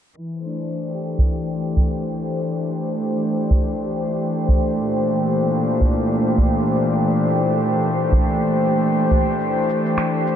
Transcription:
0.16 string section E3
0.34 string section C5
0.42 string section A3 D4
0.87 string section G4
1.19 udu
1.77 udu
3.51 udu
4.49 udu
4.78 string section A#2
5.81 udu
6.38 udu
8.12 udu
9.11 udu
9.41 cabasa
9.69 cabasa
9.86 cabasa
9.98 finger snap, cabasa
10.27 cabasa

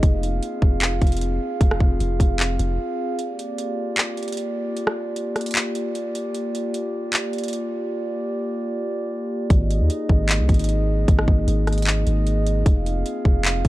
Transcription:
Already playing: glass harmonica G#4
0.03 808-style bass F1, glass harmonica C4 F4 F5, kick, closed hi-hat
0.23 closed hi-hat
0.43 closed hi-hat
0.62 808-style bass F1, kick
0.81 clap, closed hi-hat
1.02 808-style bass F1, kick, closed hi-hat
1.07 closed hi-hat
1.12 closed hi-hat
1.17 closed hi-hat
1.21 closed hi-hat
1.61 808-style bass F1, kick, closed hi-hat
1.71 cross-stick
1.80 808-style bass F1, kick
2.00 808-style bass F1, closed hi-hat
2.20 808-style bass F1, kick, closed hi-hat
2.39 clap, closed hi-hat
2.59 808-style bass F1, closed hi-hat
3.19 glass harmonica A#3 F4 G4 D5, closed hi-hat
3.39 closed hi-hat
3.58 closed hi-hat
3.97 clap, closed hi-hat
4.17 closed hi-hat
4.23 closed hi-hat
4.28 closed hi-hat
4.32 closed hi-hat
4.37 closed hi-hat
4.77 closed hi-hat
4.87 cross-stick
5.16 closed hi-hat
5.36 cross-stick, closed hi-hat
5.41 closed hi-hat
5.46 closed hi-hat
5.51 closed hi-hat
5.55 clap, closed hi-hat
5.75 closed hi-hat
5.95 closed hi-hat
6.15 closed hi-hat
6.34 closed hi-hat
6.55 closed hi-hat
6.74 closed hi-hat
7.13 clap, closed hi-hat
7.33 closed hi-hat
7.38 closed hi-hat
7.44 closed hi-hat
7.48 closed hi-hat
7.53 closed hi-hat
9.50 808-style bass G#1, glass harmonica D#4 G#4 D#5, kick, closed hi-hat
9.71 closed hi-hat
9.80 808-style bass D#2
9.90 closed hi-hat
10.09 808-style bass G#1, kick
10.29 clap, closed hi-hat
10.40 808-style bass C2
10.49 808-style bass G#1, kick, closed hi-hat
10.54 closed hi-hat
10.59 closed hi-hat
10.64 closed hi-hat
10.69 closed hi-hat
11.08 808-style bass G#1, kick, closed hi-hat
11.19 cross-stick
11.28 808-style bass G#1, kick
11.48 808-style bass G#1, closed hi-hat
11.67 cross-stick, closed hi-hat
11.73 closed hi-hat
11.78 closed hi-hat
11.82 closed hi-hat
11.86 clap, closed hi-hat
12.07 808-style bass G#1, closed hi-hat
12.27 closed hi-hat
12.47 closed hi-hat
12.66 808-style bass F1, glass harmonica C4 F4 F5, kick, closed hi-hat
12.86 closed hi-hat
13.06 closed hi-hat
13.25 808-style bass F1, kick
13.44 clap, closed hi-hat
13.65 808-style bass F1, kick, closed hi-hat

